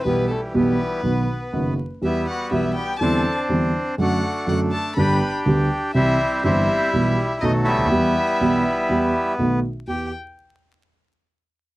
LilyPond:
<<
  \new Staff \with { instrumentName = "Violin" } { \time 4/4 \key e \minor \tempo 4 = 122 b'8 a'8 b'2~ b'8 r8 | e''8 fis''8 e''8 g''8 a''8. r4 r16 | fis''4 fis''8 a''8 b''8. r4 r16 | e''4 e''2 dis''8 e''8~ |
e''2. r4 | g''8 r2. r8 | }
  \new Staff \with { instrumentName = "Bandoneon" } { \time 4/4 \key e \minor b8 a8 b2~ b8 r8 | e'8 fis'8 e'8 g'8 a'8. r4 r16 | fis'4 fis'8 a'8 b'8. r4 r16 | e'4 e'2 dis'8 e'8~ |
e'2. r4 | g'8 r2. r8 | }
  \new Staff \with { instrumentName = "Bandoneon" } { \time 4/4 \key e \minor <e g>4 <e g>4 r2 | <g b>2 <c' d'>2 | <a d'>2 <d' g'>2 | <g c'>4 <g c'>2 <fis a>8 <g b>8~ |
<g b>2.~ <g b>8 r8 | r1 | }
  \new Staff \with { instrumentName = "Grand piano" } { \clef bass \time 4/4 \key e \minor <b,, b, e g b g'>8 r8 <b,, b, e g b g'>8 r8 <b,, b, dis fis b fis'>8 r8 <fis,, fis, dis fis b fis'>8 r8 | <e, e g b g'>8 r8 <b,, b, e g b g'>8 r8 <e, d e g c' e'>8 r8 <e, d e g c' e'>8 r8 | <fis, d fis a fis'>8 r8 <fis, d fis a fis'>8 r8 <g,, g, d g b g'>8 r8 <d, d g b g'>8 r8 | <c, c e g c' g'>8 r8 <g,, g, e g c' g'>8 r8 <b,, b, e g b g'>8 r8 <b,, b, dis a b fis'>8 r32 cis,32 d,32 dis,32 |
<e, e g b g'>8 r8 <b,, b, e g b g'>8 r8 <e, e g b g'>8 r8 <b,, b, dis a b fis'>8 r8 | <e, b e' g'>8 r2. r8 | }
>>